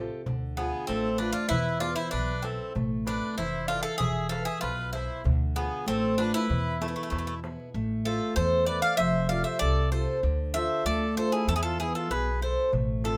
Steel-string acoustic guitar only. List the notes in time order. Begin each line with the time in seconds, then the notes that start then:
Already playing: C3 F4 G4 A4
0.27 D3
0.57 D4 F4
0.89 A3
1.19 D4 F4 A4
1.51 E3
1.82 B3 E4 G#4
2.43 E4 B4
2.75 A3
3.06 C4 E4 A4
3.37 E3
3.69 E4 A4 C5
4.00 E3
4.30 G#4 B4 E5
4.62 B2
4.93 E4 G#4
5.24 D3
5.55 D4 F4
5.86 A3
6.18 D4 F4 A4
6.50 E3
6.81 B3 E4 G#4
7.13 B2
7.44 B3 E4 G#4
7.75 A3
8.06 A4 C5 E5
8.36 E3
8.68 E4 A4 C5
8.98 F3
9.29 F4 G4 A4
9.60 C3
9.92 F4 G4 A4
10.23 D3
10.54 D4 F4 A4
10.86 A3
11.16 D4 F4 A4
11.48 E3
11.78 B3 E4 G#4
12.11 B2
12.41 E4
12.72 A3
13.04 C4 A4 E5